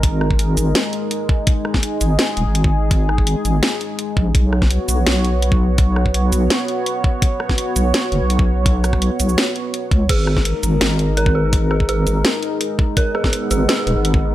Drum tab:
CC |----------------|----------------|----------------|----------------|
HH |x---x-x-x-x-x---|x---x-x-x-x-x---|x---x-x-x-x-x---|x---x-x-x-x-x---|
SH |------x---------|------x---------|------x---------|------x---------|
SD |--r-----o-------|--ro----o-------|--r-----o-------|--ro----o-------|
BD |o--o----------o-|o--o---------o--|o--o----------o-|o--o---------o--|

CC |----------------|----------------|----------------|x---------------|
HH |x---x-x-x-x-x---|x---x-x-x-x-x---|x-x-x-x-x-x-x-x-|x---x-x-x-x-x---|
SH |------x---------|------x---------|--x---xx--------|------x---------|
SD |--r-----o-------|--ro----o-------|--rr----o-------|--ro----o-------|
BD |o--o----------o-|o--o---------o--|o--o----------o-|o--o---------o--|

CC |----------------|----------------|
HH |x---x-x-x-x-x---|x---x-x-x-x-x---|
SH |------x---------|------x---------|
SD |--r-----o-------|--ro----o-------|
BD |o--o----------o-|o--o---------o--|